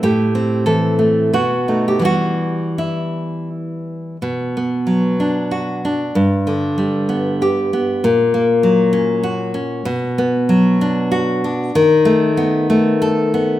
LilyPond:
\new Staff \with { instrumentName = "Nylon-string guitar" } { \time 3/4 \key e \minor \tempo 4 = 95 << { g'4 a'4 fis'8. g'16 | fis'4 e'4 r4 | \key b \minor r2. | r2. |
r2. | r2. | \key b \phrygian r2. | } \\ { a,8 c'8 e8 a8 b,8 <a dis'>8 | <e g b>2. | b,8 b8 fis8 d'8 fis'8 d'8 | g,8 d8 g8 b8 g'8 b8 |
ais,8 ais8 fis8 cis'8 fis'8 cis'8 | b,8 b8 fis8 d'8 fis'8 d'8 | dis8 a8 b8 a8 a'8 b8 | } >> }